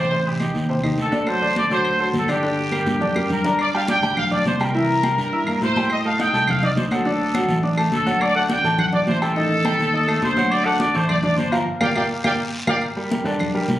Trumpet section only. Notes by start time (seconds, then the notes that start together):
0.00 C5
0.28 G4
0.99 A4
1.29 C5
1.57 D5
1.72 C5
2.01 C5
2.16 A4
2.31 G4
3.31 A#4
3.60 D5
3.74 F5
3.89 G5
4.18 F5
4.32 D5
4.47 C5
4.60 A#4
5.62 C5
5.91 D#5
6.05 F5
6.20 G5
6.49 F5
6.63 D5
6.78 C5
6.92 A4
7.92 A4
8.21 D5
8.35 F#5
8.49 G5
8.78 F#5
8.93 D5
9.07 C5
9.21 A4
10.22 C5
10.50 D5
10.64 F#5
10.80 D5
10.94 C5
11.08 D5
11.23 D5
11.37 C5
11.52 A#4
11.81 D5 F5 G5
11.96 D5 F5 G5
12.25 D5 F5 G5
12.68 D5 F5 G5